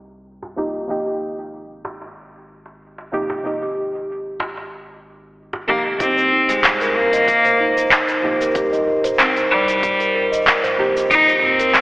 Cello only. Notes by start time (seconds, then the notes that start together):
5.68 A#3
6.00 C4
6.49 G#3
6.95 A#3
9.19 C4
9.51 G3
11.11 D#4
11.43 C4